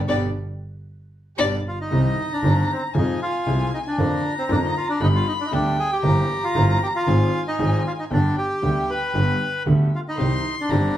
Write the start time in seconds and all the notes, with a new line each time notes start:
0.08 G1 B2 D3 G3 D4 G4 B4 D5
1.38 G1 B2 D3 G3 D4 G4 B4 D5
1.68 F4
1.81 D#4
1.90 C2 C3 D#3 G3 C4 G4 A#5
2.33 D4
2.43 G1 G2 D#3 G3 C4 G4
2.72 C4
2.94 F2 C3 F3 G#3 D#4 F4 G#5
3.22 F4
3.47 C2 C3 F3 G#3 F4
3.74 D#4
3.87 D4
3.98 F2 D3 F3 A#3 F4 A#5
4.39 C4
4.49 F2 D3 F3 A#3 D4 F4
4.64 D#4
4.77 F4
4.89 D4
5.00 G1 G2 D3 G3 B3 D#4 G4 B5
5.15 F4
5.28 D#4
5.40 D4
5.46 D#4
5.52 D2 D3 G3 B3 D4 G4 G5
5.80 G#4
5.92 G4
6.03 G1 G2 E3 A#3 C4 G4 A#5
6.44 F4
6.55 G1 G2 E3 A#3 C4 G4
6.83 G4
6.96 F4
7.07 G#1 G#2 F3 G#3 C4 G#4 G#5
7.48 D#4
7.59 G#1 G#2 F3 G#3 C4 G#4
7.87 F4
7.99 D#4
8.10 G1 G2 D3 G3 B3 D4 G4 G5
8.38 G4
8.62 D2 D3 G3 B3 G4
8.90 B4
9.14 G1 G2 D3 G3 B3 G4
9.66 D2 D3 G3 B3 G4
9.95 F4
10.08 D#4 B5
10.17 C2 C3 D#3 G3 C4 D#4 G4 C6
10.61 D4
10.70 G1 G2 D#3 G3 C4 D#4 G4 A#5